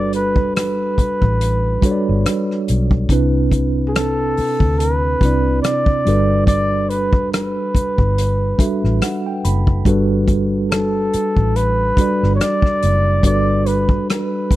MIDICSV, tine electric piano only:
0, 0, Header, 1, 2, 480
1, 0, Start_track
1, 0, Key_signature, 1, "major"
1, 0, Tempo, 845070
1, 1757, Time_signature, 4, 2, 24, 8
1, 8270, End_track
2, 0, Start_track
2, 0, Title_t, "Tine electric piano"
2, 0, Program_c, 0, 4
2, 0, Control_c, 0, 64, 127
2, 0, Note_on_c, 0, 55, 58
2, 0, Note_on_c, 0, 62, 54
2, 0, Note_on_c, 0, 66, 57
2, 0, Note_on_c, 0, 69, 65
2, 0, Note_on_c, 0, 71, 69
2, 709, Note_off_c, 0, 55, 0
2, 710, Note_off_c, 0, 62, 0
2, 714, Note_off_c, 0, 66, 0
2, 716, Note_off_c, 0, 69, 0
2, 718, Note_off_c, 0, 71, 0
2, 1029, Note_on_c, 0, 55, 65
2, 1036, Note_on_c, 0, 62, 56
2, 1040, Note_on_c, 0, 66, 64
2, 1046, Note_on_c, 0, 69, 59
2, 1052, Note_on_c, 0, 73, 68
2, 1087, Note_off_c, 0, 73, 0
2, 1087, Note_on_c, 0, 74, 76
2, 1689, Note_off_c, 0, 55, 0
2, 1692, Note_off_c, 0, 62, 0
2, 1694, Note_off_c, 0, 66, 0
2, 1698, Note_off_c, 0, 69, 0
2, 1718, Note_off_c, 0, 74, 0
2, 1754, Note_on_c, 0, 48, 78
2, 1758, Note_on_c, 0, 60, 70
2, 1764, Control_c, 0, 64, 0
2, 1765, Note_on_c, 0, 62, 77
2, 1769, Note_on_c, 0, 64, 67
2, 1774, Note_on_c, 0, 71, 85
2, 1868, Control_c, 0, 64, 127
2, 2630, Note_off_c, 0, 48, 0
2, 2632, Note_off_c, 0, 60, 0
2, 2636, Note_off_c, 0, 62, 0
2, 2637, Note_off_c, 0, 64, 0
2, 2640, Note_off_c, 0, 71, 0
2, 2961, Note_on_c, 0, 48, 62
2, 2969, Note_on_c, 0, 60, 56
2, 2972, Note_on_c, 0, 62, 53
2, 2976, Note_on_c, 0, 64, 52
2, 2982, Note_on_c, 0, 74, 64
2, 3435, Note_off_c, 0, 62, 0
2, 3438, Note_on_c, 0, 55, 74
2, 3439, Note_off_c, 0, 48, 0
2, 3442, Note_on_c, 0, 62, 60
2, 3443, Note_off_c, 0, 60, 0
2, 3444, Control_c, 0, 64, 0
2, 3447, Note_off_c, 0, 64, 0
2, 3448, Note_on_c, 0, 66, 58
2, 3450, Note_off_c, 0, 74, 0
2, 3453, Note_on_c, 0, 69, 63
2, 3457, Note_on_c, 0, 71, 73
2, 3538, Control_c, 0, 64, 127
2, 4312, Note_off_c, 0, 55, 0
2, 4314, Note_off_c, 0, 62, 0
2, 4317, Note_off_c, 0, 66, 0
2, 4320, Note_off_c, 0, 69, 0
2, 4321, Note_off_c, 0, 71, 0
2, 4873, Note_on_c, 0, 55, 61
2, 4879, Note_on_c, 0, 62, 60
2, 4883, Note_on_c, 0, 76, 53
2, 4886, Note_on_c, 0, 66, 65
2, 4887, Note_on_c, 0, 69, 62
2, 4893, Note_on_c, 0, 71, 72
2, 5103, Note_off_c, 0, 76, 0
2, 5123, Note_on_c, 0, 78, 52
2, 5248, Note_off_c, 0, 78, 0
2, 5263, Note_on_c, 0, 79, 61
2, 5354, Note_off_c, 0, 79, 0
2, 5365, Note_on_c, 0, 83, 65
2, 5531, Note_off_c, 0, 55, 0
2, 5534, Note_off_c, 0, 62, 0
2, 5537, Note_off_c, 0, 66, 0
2, 5538, Note_off_c, 0, 69, 0
2, 5541, Note_off_c, 0, 71, 0
2, 5584, Note_off_c, 0, 83, 0
2, 5596, Note_on_c, 0, 55, 83
2, 5600, Note_on_c, 0, 62, 67
2, 5603, Note_on_c, 0, 66, 69
2, 5604, Control_c, 0, 64, 0
2, 5608, Note_on_c, 0, 69, 70
2, 5617, Note_on_c, 0, 71, 82
2, 5692, Control_c, 0, 64, 127
2, 6471, Note_off_c, 0, 55, 0
2, 6473, Note_off_c, 0, 62, 0
2, 6474, Note_off_c, 0, 66, 0
2, 6477, Note_off_c, 0, 69, 0
2, 6481, Note_off_c, 0, 71, 0
2, 6801, Note_on_c, 0, 55, 58
2, 6804, Note_on_c, 0, 62, 51
2, 6810, Note_on_c, 0, 66, 58
2, 6813, Note_on_c, 0, 69, 48
2, 6821, Note_on_c, 0, 74, 68
2, 7455, Note_off_c, 0, 55, 0
2, 7456, Note_off_c, 0, 62, 0
2, 7459, Note_off_c, 0, 66, 0
2, 7461, Note_off_c, 0, 69, 0
2, 7465, Note_off_c, 0, 74, 0
2, 7515, Note_on_c, 0, 55, 62
2, 7519, Note_on_c, 0, 62, 59
2, 7526, Note_on_c, 0, 66, 63
2, 7529, Note_on_c, 0, 69, 60
2, 7536, Note_on_c, 0, 71, 69
2, 8270, Note_off_c, 0, 55, 0
2, 8270, Note_off_c, 0, 62, 0
2, 8270, Note_off_c, 0, 66, 0
2, 8270, Note_off_c, 0, 69, 0
2, 8270, Note_off_c, 0, 71, 0
2, 8270, End_track
0, 0, End_of_file